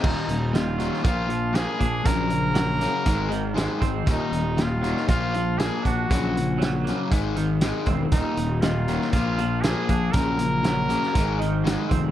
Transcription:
<<
  \new Staff \with { instrumentName = "Trumpet" } { \time 4/4 \key ees \minor \tempo 4 = 119 ees'4 f'4 f'4 aes'4 | bes'2.~ bes'8 r8 | ees'4 f'4 f'4 aes'8 ges'8~ | ges'4. r2 r8 |
ees'4 f'4 f'4 aes'4 | bes'2.~ bes'8 r8 | }
  \new Staff \with { instrumentName = "Clean electric guitar" } { \clef bass \time 4/4 \key ees \minor ees,4 ees8 ges8 bes,8 f8 bes8 d'8 | ges,4 ges8 bes8 aes,8 ees8 aes8 c'8 | ees,4 ees8 ges8 bes,8 f8 bes8 d'8 | ges,4 ges8 bes8 aes,8 ees8 aes8 c'8 |
ees,4 ees8 ges8 bes,8 f8 bes8 d'8 | ges,4 ges8 bes8 aes,8 ees8 aes8 c'8 | }
  \new Staff \with { instrumentName = "Distorted electric guitar" } { \clef bass \time 4/4 \key ees \minor <ees, bes, ees>8 <ees, bes,>8 <ees, bes,>8 <ees, bes, ees>8 <bes, f bes>8 <bes, f>8 <bes, f bes>8 <bes, f>8 | <ges, des ges>8 <ges, des>8 <ges, des>8 <ges, des ges>8 <aes, ees aes>8 <aes, ees>8 <aes, ees aes>8 <aes, ees>8 | <ees, bes, ees>8 <ees, bes,>8 <ees, bes,>8 <ees, bes, ees>8 <bes, f bes>8 <bes, f>8 <bes, f bes>8 <bes, f>8 | <ges, des ges>8 <ges, des>8 <ges, des>8 <ges, des ges>8 <aes, ees aes>8 <aes, ees>8 <aes, ees aes>8 <aes, ees>8 |
<ees, bes, ees>8 <ees, bes,>8 <ees, bes,>8 <ees, bes, ees>8 <bes, f bes>8 <bes, f>8 <bes, f bes>8 <bes, f>8 | <ges, des ges>8 <ges, des>8 <ges, des>8 <ges, des ges>8 <aes, ees aes>8 <aes, ees>8 <aes, ees aes>8 <aes, ees>8 | }
  \new Staff \with { instrumentName = "Fingered electric bass" } { \clef bass \time 4/4 \key ees \minor ees,,16 r16 ees,,4. bes,,4. bes,,8 | bes,,2 aes,,4. aes,,8 | ees,,16 r16 ees,,4. bes,,4. bes,,8 | bes,,2 aes,,4. fes,,8 |
ees,,16 r16 ees,,4. bes,,4. bes,,8 | bes,,2 aes,,4. f,,8 | }
  \new DrumStaff \with { instrumentName = "Drums" } \drummode { \time 4/4 <cymc bd>8 hh8 <hh sn>8 hh16 sn16 <hh bd>8 hh8 <hh sn>8 <hh bd>8 | <hh bd>8 hh8 <hh sn>8 hh8 <hh bd>8 hh8 <hh sn>8 <hh bd>8 | <hh bd>8 hh8 <hh sn>8 hh16 sn16 <hh bd>8 hh8 <hh sn>8 <hh bd>8 | <hh bd>8 hh8 <hh sn>8 hh8 <hh bd>8 hh8 <hh sn>8 <hh bd>8 |
<hh bd>8 hh8 <hh sn>8 hh16 sn16 <hh bd>8 hh8 <hh sn>8 <hh bd>8 | <hh bd>8 hh8 <hh sn>8 hh16 sn16 <hh bd>8 hh8 <hh sn>8 <hh bd>8 | }
>>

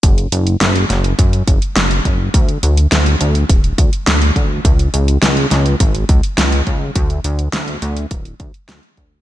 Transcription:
<<
  \new Staff \with { instrumentName = "Analog synth bass" } { \clef bass \time 4/4 \key cis \phrygian \tempo 4 = 104 fis,,8 fis,,8 fis,,8 fis,,8 fis,8 fis,,8 fis,,8 fis,,8 | d,8 d,8 d,8 d,8 d,,8 d,8 d,8 d,8 | cis,8 cis,8 cis,8 cis,8 gis,,8 cis,8 cis,8 cis,8 | d,8 d,8 d,8 d,8 d,,8 d,8 d,8 d,8 | }
  \new DrumStaff \with { instrumentName = "Drums" } \drummode { \time 4/4 <hh bd>16 hh16 hh16 hh16 <hh sn>16 hh16 <hh sn>16 hh16 <hh bd>16 hh16 <hh bd>16 hh16 <hh sn>16 hh16 <hh bd>8 | <hh bd>16 hh16 hh16 hh16 <hh sn>16 hh16 hh16 hh16 <hh bd>16 hh16 <hh bd>16 hh16 <hh sn>16 hh16 <hh bd>8 | <hh bd>16 hh16 hh16 hh16 <hh sn>16 hh16 <hh sn>16 hh16 <hh bd>16 hh16 <hh bd>16 hh16 <hh sn>16 hh16 <hh bd>8 | <hh bd>16 hh16 hh16 hh16 <hh sn>16 hh16 hh16 hh16 <hh bd>16 hh16 <hh bd>16 hh16 <hh sn>16 hh16 <hh bd>8 | }
>>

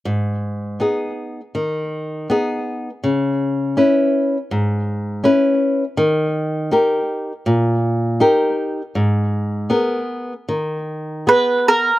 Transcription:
<<
  \new Staff \with { instrumentName = "Mandolin" } { \time 4/4 \key gis \minor \tempo 4 = 80 r1 | r1 | r1 | r2. b'8 ais'8 | }
  \new Staff \with { instrumentName = "Nylon-string guitar" } { \time 4/4 \key gis \minor gis,4 <b dis' gis'>4 dis4 <b dis' gis'>4 | cis4 <cis' e' b'>4 gis,4 <cis' e' b'>4 | dis4 <dis' g' ais'>4 ais,4 <dis' g' ais'>4 | gis,4 <b gis' ais'>4 dis4 <b gis'>4 | }
>>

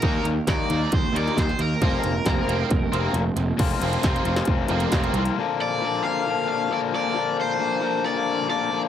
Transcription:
<<
  \new Staff \with { instrumentName = "Overdriven electric guitar" } { \time 4/4 \key bes \major \tempo 4 = 135 bes'8 r8 d''4 c''8 d''8 c''8 bes'8 | bes'2. r4 | r1 | r8 d''4 f''4 f''8 d''8 d''8~ |
d''8 c''4. d''4 d''8. r16 | }
  \new Staff \with { instrumentName = "Distorted electric guitar" } { \time 4/4 \key bes \major <ees bes ees'>8 <ees bes>8 <ees bes>8 <ees bes ees'>8 <ees bes>8 <ees bes ees'>8 <ees bes>8 <ees bes>8 | <f bes c'>8 <f bes>8 <f bes>8 <f bes c'>8 <f bes>8 <f bes c'>8 <f bes>8 <f bes>8 | r8 <f bes c'>8 <f bes c'>8 r4 <f bes c'>8 <f bes c'>8 r8 | r1 |
r1 | }
  \new Staff \with { instrumentName = "Overdriven electric guitar" } { \clef bass \time 4/4 \key bes \major <ees g bes ees'>8 r8 <ees g bes ees'>8 r4 <ees g bes ees'>8 r4 | <c f bes c'>8 r8 <c f bes c'>8 r4 <c f bes c'>8 r4 | <f, c f bes c' f'>8 <f bes c' f'>8 <f bes c' f'>8 <f bes c' f'>8 <f, c f bes c' f'>4 <f bes c' f'>8 <f bes c' f'>8 | <bes, d f bes d'>4 <bes, d f bes d'>8 <bes, d f bes d'>8 <bes, d f bes d'>4 <bes, d f bes d'>8 <bes, d f bes d'>8 |
<bes, d f bes d'>4 <bes, d f bes d'>8 <bes, d f bes d'>8 <bes, d f bes d'>4 <bes, d f bes d'>8 <bes, d f bes d'>8 | }
  \new Staff \with { instrumentName = "Picked electric bass" } { \clef bass \time 4/4 \key bes \major ees,8 ees,8 ees,8 ees,8 ees,8 ees,8 ees,8 ees,8 | f,,8 f,,8 f,,8 f,,8 f,,8 f,,8 f,,8 f,,8 | f,,8 f,,8 f,,8 f,,8 f,,8 f,,8 f,,8 c,8 | r1 |
r1 | }
  \new DrumStaff \with { instrumentName = "Drums" } \drummode { \time 4/4 <hh bd>8 hh8 <hh bd sn>8 hh8 <hh bd>8 hh16 sn16 <hh bd sn>16 sn16 hh8 | <hh bd>8 hh8 <hh bd sn>8 hh8 <hh bd>8 hh8 hh8 hh8 | <cymc hh bd>16 hh16 hh16 hh16 <hh bd sn>16 hh16 hh16 sn16 <hh bd>8 <hh sn>16 hh16 <hh bd sn>16 hh16 hh16 hh16 | r4 r4 r4 r4 |
r4 r4 r4 r4 | }
>>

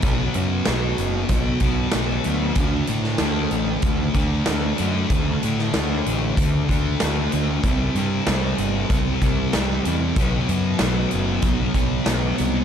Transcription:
<<
  \new Staff \with { instrumentName = "Distorted electric guitar" } { \time 4/4 \key d \mixolydian \tempo 4 = 95 <b, fis b>8 <fis b>8 <b, fis b>4. <fis b>8 <b, fis b>8 <fis b>8 | <d a d'>8 <a d'>8 <d a d'>4. <a d'>8 <d a d'>8 <a d'>8 | <d a d'>8 <a d'>8 <d a d'>4. <a d'>8 <d a d'>8 <a d'>8 | <c g c'>8 <g c'>8 <c g c'>4. <g c'>8 <c g c'>8 <g c'>8 |
<b, fis b>8 <fis b>8 <b, fis b>4. <fis b>8 <b, fis b>8 <fis b>8 | }
  \new Staff \with { instrumentName = "Picked electric bass" } { \clef bass \time 4/4 \key d \mixolydian b,,8 fis,8 b,,8 fis,,8 b,,8 b,,8 b,,8 d,8 | d,8 a,8 d,8 a,,8 d,8 d,8 d,8 fis,8 | d,8 a,8 d,8 a,,8 d,8 d,8 d,8 d,8 | c,8 g,8 c,8 g,,8 c,8 c,8 c,8 e,8 |
b,,8 fis,8 b,,8 fis,,8 b,,8 b,,8 b,,8 c,8 | }
  \new DrumStaff \with { instrumentName = "Drums" } \drummode { \time 4/4 <hh bd>8 hh8 <hh sn>8 hh8 <hh bd>8 <hh bd>8 <hh sn>8 hh8 | <hh bd>8 hh16 sn16 <hh sn>8 hh8 <hh bd>8 <hh bd>8 <hh sn>8 hh8 | <hh bd>8 hh16 sn16 <hh sn>8 hh8 <hh bd>8 <hh bd>8 <hh sn>8 hh8 | <hh bd>8 hh8 <hh sn>8 hh8 <hh bd>8 <hh bd>8 <hh sn>8 hh8 |
<hh bd>8 hh8 <hh sn>8 hh8 <hh bd>8 <hh bd>8 <hh sn>8 hh8 | }
>>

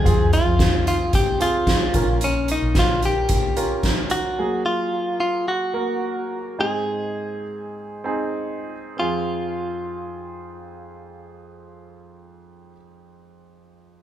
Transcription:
<<
  \new Staff \with { instrumentName = "Clean electric guitar" } { \time 4/4 \key f \minor \tempo 4 = 106 aes'8 f'4 f'8 g'8 f'4. | des'8 ees'8 f'8 g'4. r8 ges'8~ | ges'8 f'4 f'8 ges'2 | aes'2. r4 |
f'1~ | f'1 | }
  \new Staff \with { instrumentName = "Grand piano" } { \time 4/4 \key f \minor <c' f' aes'>4. r4 <c' f' aes'>4 <bes, des' f' bes'>8~ | <bes, des' f' bes'>4 r4. <des' f' bes'>4 r8 | <ges bes aes'>4. r4 <bes ges' bes'>4 r8 | <aes, c' ees' aes'>4. r4 <c' ees' aes'>4 r8 |
<f, c' f' aes'>1~ | <f, c' f' aes'>1 | }
  \new Staff \with { instrumentName = "Fingered electric bass" } { \clef bass \time 4/4 \key f \minor f,8. f,2~ f,8. bes,,8~ | bes,,8. bes,,2~ bes,,8. ees,,8 | r1 | r1 |
r1 | r1 | }
  \new DrumStaff \with { instrumentName = "Drums" } \drummode { \time 4/4 <hh bd>8 hh8 <hh bd sn>8 hh8 <hh bd>8 hh8 <hh bd sn>8 <hh bd>8 | hh8 hh8 <hh bd sn>8 hh8 <hh bd>8 hh8 <hh bd sn>8 hh8 | r4 r4 r4 r4 | r4 r4 r4 r4 |
r4 r4 r4 r4 | r4 r4 r4 r4 | }
>>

